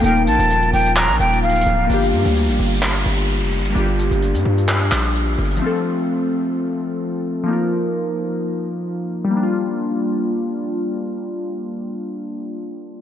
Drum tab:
HH |x-x-x-x-x-x-o-x-x-x-x-x-xxxxx---|x-x-x-x-x-x---x-x-x-x-x-x---xxxx|x-x-x-x-x-x---x-x-x-x-x-x---xxxx|--------------------------------|
CP |----------------x---------------|----------------x---------------|----------------x---x-----------|--------------------------------|

HH |--------------------------------|--------------------------------|--------------------------------|
CP |--------------------------------|--------------------------------|--------------------------------|